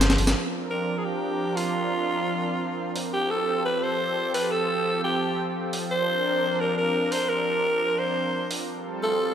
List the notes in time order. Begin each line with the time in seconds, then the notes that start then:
Already playing: G1 F3 C4 A4 C5
0.01 snare, closed hi-hat, tambourine
0.10 snare, closed hi-hat, tambourine
0.18 G1, open hi-hat
0.27 snare, closed hi-hat, tambourine
0.35 F3 C4 D4 A#4
0.70 A#4
0.98 G#4
1.05 G4
1.57 F4, open hi-hat
2.96 open hi-hat
3.13 F3 G4 A4
3.31 A4
3.65 B4
3.83 C5
4.34 B4, open hi-hat
4.52 A4
5.04 G4
5.73 open hi-hat
5.90 D4 A#4 C5
6.60 A#4
6.77 A#4
7.12 C5, open hi-hat
7.29 A#4
7.99 C5
8.51 open hi-hat
8.68 G3 C4 F4 A4
9.03 A4